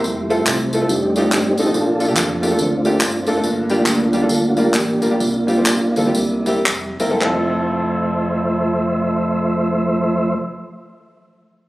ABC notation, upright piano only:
X:1
M:4/4
L:1/16
Q:"Swing" 1/4=130
K:F
V:1 name="Upright piano"
z2 [A,CEFA] [A,CEFA] z2 [A,CEFA] [A,CEFA] z2 [A,D_EFG] z3 [A,DEFA] [A,DEFA] | z2 [A,B,DFA] [A,B,DFG] z2 [A,B,DFG] [A,B,DFA] z2 [A,B,DFG] z3 [A,B,DFA] [A,B,DFA] | z2 [G,B,DFG] [G,B,DFG] z2 [G,B,DFG] [G,B,DFA] z2 [G,B,DFB] z3 [G,B,DFB] [G,B,DFG] | z2 [G,B,CFG] [G,B,CFG] z2 [G,B,CFA] [G,B,CFG] z2 [G,B,CEG] z3 [G,B,CEB] [G,B,CEA] |
[CEFA]16- | [CEFA]16 |]
V:2 name="Upright piano" clef=bass
z16 | B,,6 z8 z2 | G,,6 z8 z2 | C,6 z2 C,6 z2 |
F,,16- | F,,16 |]